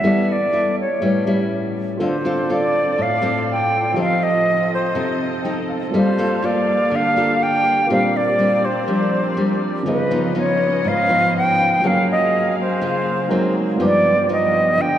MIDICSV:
0, 0, Header, 1, 5, 480
1, 0, Start_track
1, 0, Tempo, 490998
1, 43, Time_signature, 4, 2, 24, 8
1, 14648, End_track
2, 0, Start_track
2, 0, Title_t, "Flute"
2, 0, Program_c, 0, 73
2, 0, Note_on_c, 0, 76, 89
2, 316, Note_on_c, 0, 74, 91
2, 331, Note_off_c, 0, 76, 0
2, 780, Note_off_c, 0, 74, 0
2, 788, Note_on_c, 0, 73, 64
2, 1456, Note_off_c, 0, 73, 0
2, 1993, Note_on_c, 0, 72, 78
2, 2464, Note_on_c, 0, 74, 90
2, 2479, Note_off_c, 0, 72, 0
2, 2953, Note_on_c, 0, 77, 87
2, 2968, Note_off_c, 0, 74, 0
2, 3419, Note_off_c, 0, 77, 0
2, 3431, Note_on_c, 0, 79, 85
2, 3865, Note_off_c, 0, 79, 0
2, 3915, Note_on_c, 0, 77, 89
2, 4136, Note_on_c, 0, 75, 93
2, 4151, Note_off_c, 0, 77, 0
2, 4610, Note_off_c, 0, 75, 0
2, 4637, Note_on_c, 0, 72, 76
2, 5542, Note_off_c, 0, 72, 0
2, 5827, Note_on_c, 0, 72, 83
2, 6307, Note_on_c, 0, 74, 85
2, 6322, Note_off_c, 0, 72, 0
2, 6801, Note_on_c, 0, 77, 100
2, 6816, Note_off_c, 0, 74, 0
2, 7263, Note_on_c, 0, 79, 100
2, 7277, Note_off_c, 0, 77, 0
2, 7734, Note_off_c, 0, 79, 0
2, 7742, Note_on_c, 0, 77, 92
2, 7984, Note_on_c, 0, 74, 92
2, 7999, Note_off_c, 0, 77, 0
2, 8457, Note_on_c, 0, 72, 77
2, 8471, Note_off_c, 0, 74, 0
2, 9411, Note_off_c, 0, 72, 0
2, 9673, Note_on_c, 0, 71, 83
2, 10160, Note_on_c, 0, 73, 84
2, 10175, Note_off_c, 0, 71, 0
2, 10637, Note_on_c, 0, 77, 97
2, 10652, Note_off_c, 0, 73, 0
2, 11102, Note_off_c, 0, 77, 0
2, 11120, Note_on_c, 0, 79, 103
2, 11604, Note_on_c, 0, 77, 100
2, 11619, Note_off_c, 0, 79, 0
2, 11825, Note_off_c, 0, 77, 0
2, 11845, Note_on_c, 0, 75, 88
2, 12273, Note_off_c, 0, 75, 0
2, 12329, Note_on_c, 0, 72, 77
2, 13229, Note_off_c, 0, 72, 0
2, 13532, Note_on_c, 0, 74, 100
2, 13957, Note_off_c, 0, 74, 0
2, 14009, Note_on_c, 0, 75, 88
2, 14481, Note_on_c, 0, 79, 104
2, 14496, Note_off_c, 0, 75, 0
2, 14648, Note_off_c, 0, 79, 0
2, 14648, End_track
3, 0, Start_track
3, 0, Title_t, "Grand piano"
3, 0, Program_c, 1, 0
3, 0, Control_c, 1, 64, 127
3, 13, Note_on_c, 1, 55, 41
3, 26, Note_on_c, 1, 64, 40
3, 40, Note_on_c, 1, 69, 42
3, 54, Control_c, 1, 64, 0
3, 57, Note_on_c, 1, 71, 43
3, 69, Note_on_c, 1, 74, 52
3, 255, Control_c, 1, 64, 127
3, 969, Note_off_c, 1, 55, 0
3, 975, Note_off_c, 1, 64, 0
3, 976, Note_on_c, 1, 57, 41
3, 982, Note_off_c, 1, 69, 0
3, 991, Note_off_c, 1, 71, 0
3, 992, Note_on_c, 1, 64, 39
3, 997, Note_off_c, 1, 74, 0
3, 1009, Note_on_c, 1, 67, 44
3, 1016, Control_c, 1, 64, 0
3, 1020, Note_on_c, 1, 71, 42
3, 1038, Note_on_c, 1, 73, 45
3, 1163, Control_c, 1, 64, 127
3, 1930, Note_off_c, 1, 57, 0
3, 1930, Note_on_c, 1, 65, 48
3, 1939, Note_off_c, 1, 64, 0
3, 1947, Note_off_c, 1, 67, 0
3, 1948, Note_on_c, 1, 69, 45
3, 1953, Note_off_c, 1, 71, 0
3, 1962, Note_off_c, 1, 73, 0
3, 1969, Note_on_c, 1, 72, 43
3, 1977, Control_c, 1, 64, 0
3, 1987, Note_on_c, 1, 74, 49
3, 2132, Control_c, 1, 64, 127
3, 3828, Note_off_c, 1, 65, 0
3, 3838, Note_off_c, 1, 69, 0
3, 3848, Note_off_c, 1, 72, 0
3, 3852, Note_on_c, 1, 53, 52
3, 3858, Note_off_c, 1, 74, 0
3, 3863, Note_on_c, 1, 67, 44
3, 3875, Note_on_c, 1, 69, 44
3, 3892, Note_on_c, 1, 72, 44
3, 3898, Control_c, 1, 64, 0
3, 3905, Note_on_c, 1, 75, 53
3, 4058, Control_c, 1, 64, 127
3, 5317, Note_on_c, 1, 79, 51
3, 5544, Note_off_c, 1, 79, 0
3, 5562, Note_on_c, 1, 77, 49
3, 5750, Note_off_c, 1, 53, 0
3, 5756, Note_off_c, 1, 67, 0
3, 5761, Note_off_c, 1, 69, 0
3, 5770, Note_off_c, 1, 72, 0
3, 5774, Note_on_c, 1, 55, 48
3, 5777, Note_off_c, 1, 75, 0
3, 5782, Note_on_c, 1, 65, 46
3, 5786, Note_off_c, 1, 77, 0
3, 5799, Note_on_c, 1, 69, 45
3, 5815, Control_c, 1, 64, 0
3, 5830, Note_on_c, 1, 74, 56
3, 6014, Control_c, 1, 64, 127
3, 7671, Note_off_c, 1, 55, 0
3, 7675, Note_off_c, 1, 65, 0
3, 7684, Note_off_c, 1, 69, 0
3, 7691, Note_on_c, 1, 58, 51
3, 7700, Note_off_c, 1, 74, 0
3, 7705, Note_on_c, 1, 65, 46
3, 7723, Note_on_c, 1, 67, 44
3, 7733, Note_on_c, 1, 72, 44
3, 7738, Control_c, 1, 64, 0
3, 7749, Note_on_c, 1, 74, 51
3, 7928, Control_c, 1, 64, 127
3, 9590, Note_off_c, 1, 58, 0
3, 9597, Note_off_c, 1, 65, 0
3, 9606, Note_off_c, 1, 67, 0
3, 9609, Note_on_c, 1, 49, 46
3, 9611, Note_off_c, 1, 72, 0
3, 9619, Note_off_c, 1, 74, 0
3, 9622, Note_on_c, 1, 65, 43
3, 9639, Note_on_c, 1, 68, 47
3, 9649, Note_on_c, 1, 71, 44
3, 9658, Control_c, 1, 64, 0
3, 9665, Note_on_c, 1, 75, 54
3, 9850, Control_c, 1, 64, 127
3, 11509, Note_off_c, 1, 49, 0
3, 11515, Note_off_c, 1, 65, 0
3, 11524, Note_off_c, 1, 68, 0
3, 11529, Note_off_c, 1, 71, 0
3, 11535, Note_on_c, 1, 54, 48
3, 11537, Note_off_c, 1, 75, 0
3, 11549, Note_on_c, 1, 65, 44
3, 11565, Note_on_c, 1, 68, 41
3, 11579, Control_c, 1, 64, 0
3, 11581, Note_on_c, 1, 70, 45
3, 11597, Note_on_c, 1, 61, 52
3, 11729, Control_c, 1, 64, 127
3, 12962, Note_off_c, 1, 54, 0
3, 12969, Note_off_c, 1, 65, 0
3, 12977, Note_off_c, 1, 68, 0
3, 12984, Note_on_c, 1, 56, 53
3, 12985, Note_off_c, 1, 70, 0
3, 12989, Note_on_c, 1, 63, 54
3, 12993, Note_off_c, 1, 61, 0
3, 12993, Note_on_c, 1, 66, 51
3, 13006, Note_on_c, 1, 70, 52
3, 13011, Note_on_c, 1, 72, 65
3, 13020, Control_c, 1, 64, 0
3, 13171, Control_c, 1, 64, 127
3, 13447, Note_on_c, 1, 55, 48
3, 13459, Note_on_c, 1, 59, 47
3, 13475, Note_off_c, 1, 56, 0
3, 13475, Note_on_c, 1, 65, 44
3, 13478, Note_off_c, 1, 63, 0
3, 13479, Note_off_c, 1, 66, 0
3, 13486, Note_off_c, 1, 70, 0
3, 13489, Note_off_c, 1, 72, 0
3, 13492, Note_on_c, 1, 71, 50
3, 13499, Control_c, 1, 64, 0
3, 13507, Note_on_c, 1, 86, 54
3, 13669, Control_c, 1, 64, 127
3, 14648, Note_off_c, 1, 55, 0
3, 14648, Note_off_c, 1, 59, 0
3, 14648, Note_off_c, 1, 65, 0
3, 14648, Note_off_c, 1, 71, 0
3, 14648, Note_off_c, 1, 86, 0
3, 14648, End_track
4, 0, Start_track
4, 0, Title_t, "String section"
4, 0, Program_c, 2, 48
4, 1961, Note_on_c, 2, 74, 76
4, 1962, Note_on_c, 2, 65, 62
4, 1964, Note_on_c, 2, 60, 69
4, 1966, Note_on_c, 2, 69, 56
4, 3864, Note_off_c, 2, 74, 0
4, 3866, Note_off_c, 2, 69, 0
4, 3888, Note_on_c, 2, 69, 62
4, 3890, Note_on_c, 2, 75, 77
4, 5765, Note_off_c, 2, 65, 0
4, 5766, Note_off_c, 2, 60, 0
4, 5789, Note_off_c, 2, 75, 0
4, 5805, Note_on_c, 2, 67, 65
4, 5806, Note_on_c, 2, 77, 78
4, 5808, Note_on_c, 2, 58, 72
4, 7689, Note_off_c, 2, 69, 0
4, 7707, Note_off_c, 2, 77, 0
4, 7708, Note_off_c, 2, 58, 0
4, 7719, Note_on_c, 2, 74, 73
4, 7723, Note_on_c, 2, 60, 71
4, 7725, Note_on_c, 2, 70, 60
4, 9608, Note_off_c, 2, 67, 0
4, 9623, Note_off_c, 2, 74, 0
4, 9625, Note_off_c, 2, 60, 0
4, 9626, Note_off_c, 2, 70, 0
4, 9647, Note_on_c, 2, 61, 61
4, 9647, Note_on_c, 2, 71, 62
4, 9649, Note_on_c, 2, 65, 61
4, 9651, Note_on_c, 2, 75, 81
4, 11547, Note_off_c, 2, 61, 0
4, 11547, Note_off_c, 2, 71, 0
4, 11549, Note_off_c, 2, 65, 0
4, 11549, Note_off_c, 2, 75, 0
4, 11562, Note_on_c, 2, 77, 71
4, 11569, Note_on_c, 2, 68, 62
4, 11572, Note_on_c, 2, 58, 70
4, 12990, Note_off_c, 2, 77, 0
4, 13008, Note_on_c, 2, 72, 76
4, 13469, Note_off_c, 2, 68, 0
4, 13470, Note_off_c, 2, 58, 0
4, 13482, Note_off_c, 2, 72, 0
4, 13484, Note_on_c, 2, 59, 70
4, 13485, Note_on_c, 2, 67, 66
4, 13491, Note_on_c, 2, 65, 66
4, 14648, Note_off_c, 2, 59, 0
4, 14648, Note_off_c, 2, 65, 0
4, 14648, Note_off_c, 2, 67, 0
4, 14648, End_track
5, 0, Start_track
5, 0, Title_t, "Nylon-string guitar"
5, 0, Program_c, 3, 24
5, 36, Note_on_c, 3, 55, 64
5, 38, Note_on_c, 3, 59, 46
5, 44, Note_on_c, 3, 64, 48
5, 47, Note_on_c, 3, 69, 56
5, 349, Note_off_c, 3, 59, 0
5, 353, Note_off_c, 3, 64, 0
5, 354, Note_off_c, 3, 69, 0
5, 516, Note_on_c, 3, 59, 44
5, 520, Note_on_c, 3, 64, 46
5, 523, Note_on_c, 3, 69, 51
5, 842, Note_off_c, 3, 59, 0
5, 844, Note_off_c, 3, 64, 0
5, 846, Note_off_c, 3, 69, 0
5, 976, Note_off_c, 3, 55, 0
5, 994, Note_on_c, 3, 45, 59
5, 995, Note_on_c, 3, 55, 49
5, 999, Note_on_c, 3, 61, 47
5, 1004, Note_on_c, 3, 64, 49
5, 1200, Note_off_c, 3, 55, 0
5, 1203, Note_off_c, 3, 61, 0
5, 1204, Note_off_c, 3, 64, 0
5, 1239, Note_on_c, 3, 55, 53
5, 1242, Note_on_c, 3, 61, 53
5, 1246, Note_on_c, 3, 64, 56
5, 1923, Note_off_c, 3, 55, 0
5, 1925, Note_off_c, 3, 61, 0
5, 1925, Note_off_c, 3, 64, 0
5, 1935, Note_off_c, 3, 45, 0
5, 1956, Note_on_c, 3, 60, 53
5, 1958, Note_on_c, 3, 50, 60
5, 1961, Note_on_c, 3, 65, 50
5, 1966, Note_on_c, 3, 69, 53
5, 2101, Note_off_c, 3, 60, 0
5, 2102, Note_off_c, 3, 65, 0
5, 2106, Note_off_c, 3, 69, 0
5, 2199, Note_on_c, 3, 60, 61
5, 2204, Note_on_c, 3, 65, 55
5, 2210, Note_on_c, 3, 69, 66
5, 2403, Note_off_c, 3, 60, 0
5, 2405, Note_off_c, 3, 65, 0
5, 2407, Note_off_c, 3, 69, 0
5, 2436, Note_on_c, 3, 60, 50
5, 2443, Note_on_c, 3, 65, 52
5, 2448, Note_on_c, 3, 69, 55
5, 2898, Note_off_c, 3, 50, 0
5, 2916, Note_on_c, 3, 45, 64
5, 2917, Note_off_c, 3, 60, 0
5, 2921, Note_off_c, 3, 65, 0
5, 2923, Note_off_c, 3, 69, 0
5, 3145, Note_on_c, 3, 60, 58
5, 3151, Note_on_c, 3, 65, 57
5, 3156, Note_on_c, 3, 69, 70
5, 3836, Note_off_c, 3, 60, 0
5, 3839, Note_off_c, 3, 65, 0
5, 3841, Note_off_c, 3, 69, 0
5, 3856, Note_off_c, 3, 45, 0
5, 3872, Note_on_c, 3, 53, 64
5, 3876, Note_on_c, 3, 60, 50
5, 3879, Note_on_c, 3, 63, 46
5, 3886, Note_on_c, 3, 69, 54
5, 4525, Note_off_c, 3, 60, 0
5, 4528, Note_off_c, 3, 63, 0
5, 4529, Note_off_c, 3, 69, 0
5, 4815, Note_off_c, 3, 53, 0
5, 4840, Note_on_c, 3, 48, 62
5, 4840, Note_on_c, 3, 60, 45
5, 4843, Note_on_c, 3, 63, 52
5, 4850, Note_on_c, 3, 69, 56
5, 5150, Note_off_c, 3, 60, 0
5, 5153, Note_off_c, 3, 63, 0
5, 5155, Note_off_c, 3, 69, 0
5, 5326, Note_on_c, 3, 60, 56
5, 5331, Note_on_c, 3, 63, 54
5, 5333, Note_on_c, 3, 69, 60
5, 5779, Note_off_c, 3, 48, 0
5, 5787, Note_off_c, 3, 60, 0
5, 5788, Note_off_c, 3, 63, 0
5, 5789, Note_off_c, 3, 69, 0
5, 5806, Note_on_c, 3, 55, 66
5, 5809, Note_on_c, 3, 58, 54
5, 5814, Note_on_c, 3, 65, 48
5, 5816, Note_on_c, 3, 69, 54
5, 5948, Note_off_c, 3, 58, 0
5, 5949, Note_off_c, 3, 65, 0
5, 5951, Note_off_c, 3, 69, 0
5, 6044, Note_on_c, 3, 58, 58
5, 6048, Note_on_c, 3, 65, 64
5, 6053, Note_on_c, 3, 69, 67
5, 6246, Note_off_c, 3, 58, 0
5, 6247, Note_off_c, 3, 65, 0
5, 6250, Note_off_c, 3, 69, 0
5, 6280, Note_on_c, 3, 58, 52
5, 6290, Note_on_c, 3, 65, 49
5, 6293, Note_on_c, 3, 69, 55
5, 6742, Note_off_c, 3, 55, 0
5, 6759, Note_off_c, 3, 58, 0
5, 6759, Note_on_c, 3, 50, 63
5, 6765, Note_off_c, 3, 65, 0
5, 6765, Note_off_c, 3, 69, 0
5, 7005, Note_on_c, 3, 58, 56
5, 7013, Note_on_c, 3, 65, 61
5, 7016, Note_on_c, 3, 69, 58
5, 7687, Note_off_c, 3, 58, 0
5, 7691, Note_off_c, 3, 65, 0
5, 7691, Note_off_c, 3, 69, 0
5, 7698, Note_off_c, 3, 50, 0
5, 7723, Note_on_c, 3, 46, 63
5, 7725, Note_on_c, 3, 55, 54
5, 7728, Note_on_c, 3, 60, 53
5, 7732, Note_on_c, 3, 62, 55
5, 8032, Note_off_c, 3, 55, 0
5, 8036, Note_off_c, 3, 60, 0
5, 8038, Note_off_c, 3, 62, 0
5, 8199, Note_on_c, 3, 55, 45
5, 8205, Note_on_c, 3, 60, 45
5, 8212, Note_on_c, 3, 62, 54
5, 8511, Note_off_c, 3, 55, 0
5, 8514, Note_off_c, 3, 60, 0
5, 8518, Note_off_c, 3, 62, 0
5, 8661, Note_off_c, 3, 46, 0
5, 8678, Note_on_c, 3, 53, 66
5, 8682, Note_on_c, 3, 55, 46
5, 8685, Note_on_c, 3, 60, 47
5, 8691, Note_on_c, 3, 62, 47
5, 9125, Note_off_c, 3, 55, 0
5, 9127, Note_off_c, 3, 60, 0
5, 9130, Note_off_c, 3, 62, 0
5, 9159, Note_on_c, 3, 55, 54
5, 9163, Note_on_c, 3, 60, 57
5, 9168, Note_on_c, 3, 62, 51
5, 9618, Note_off_c, 3, 53, 0
5, 9624, Note_off_c, 3, 55, 0
5, 9624, Note_off_c, 3, 60, 0
5, 9628, Note_off_c, 3, 62, 0
5, 9638, Note_on_c, 3, 53, 50
5, 9639, Note_on_c, 3, 49, 64
5, 9643, Note_on_c, 3, 59, 54
5, 9652, Note_on_c, 3, 63, 55
5, 9782, Note_off_c, 3, 53, 0
5, 9786, Note_off_c, 3, 59, 0
5, 9788, Note_off_c, 3, 63, 0
5, 9882, Note_on_c, 3, 53, 65
5, 9888, Note_on_c, 3, 59, 61
5, 9889, Note_on_c, 3, 63, 65
5, 10086, Note_off_c, 3, 53, 0
5, 10087, Note_off_c, 3, 59, 0
5, 10089, Note_off_c, 3, 63, 0
5, 10116, Note_on_c, 3, 53, 47
5, 10120, Note_on_c, 3, 59, 49
5, 10126, Note_on_c, 3, 63, 51
5, 10578, Note_off_c, 3, 49, 0
5, 10601, Note_on_c, 3, 44, 64
5, 10803, Note_off_c, 3, 53, 0
5, 10803, Note_off_c, 3, 59, 0
5, 10807, Note_off_c, 3, 63, 0
5, 10841, Note_on_c, 3, 53, 60
5, 10844, Note_on_c, 3, 59, 57
5, 10851, Note_on_c, 3, 63, 58
5, 11525, Note_off_c, 3, 53, 0
5, 11527, Note_off_c, 3, 59, 0
5, 11529, Note_off_c, 3, 63, 0
5, 11540, Note_off_c, 3, 44, 0
5, 11570, Note_on_c, 3, 54, 70
5, 11574, Note_on_c, 3, 58, 53
5, 11577, Note_on_c, 3, 65, 46
5, 11582, Note_on_c, 3, 68, 53
5, 12214, Note_off_c, 3, 58, 0
5, 12217, Note_off_c, 3, 65, 0
5, 12218, Note_off_c, 3, 68, 0
5, 12505, Note_off_c, 3, 54, 0
5, 12528, Note_on_c, 3, 49, 67
5, 12531, Note_on_c, 3, 58, 53
5, 12534, Note_on_c, 3, 65, 52
5, 12539, Note_on_c, 3, 68, 53
5, 12969, Note_off_c, 3, 58, 0
5, 12972, Note_off_c, 3, 65, 0
5, 12973, Note_off_c, 3, 68, 0
5, 12983, Note_off_c, 3, 49, 0
5, 13007, Note_on_c, 3, 54, 50
5, 13013, Note_on_c, 3, 58, 61
5, 13018, Note_on_c, 3, 60, 60
5, 13468, Note_off_c, 3, 54, 0
5, 13469, Note_off_c, 3, 58, 0
5, 13473, Note_off_c, 3, 60, 0
5, 13489, Note_on_c, 3, 43, 65
5, 13489, Note_on_c, 3, 53, 55
5, 13492, Note_on_c, 3, 59, 55
5, 13499, Note_on_c, 3, 63, 51
5, 13796, Note_off_c, 3, 53, 0
5, 13798, Note_off_c, 3, 59, 0
5, 13802, Note_off_c, 3, 63, 0
5, 13971, Note_on_c, 3, 53, 50
5, 13975, Note_on_c, 3, 59, 48
5, 13976, Note_on_c, 3, 63, 52
5, 14425, Note_off_c, 3, 43, 0
5, 14445, Note_on_c, 3, 50, 65
5, 14446, Note_off_c, 3, 53, 0
5, 14447, Note_off_c, 3, 59, 0
5, 14449, Note_off_c, 3, 63, 0
5, 14648, Note_off_c, 3, 50, 0
5, 14648, End_track
0, 0, End_of_file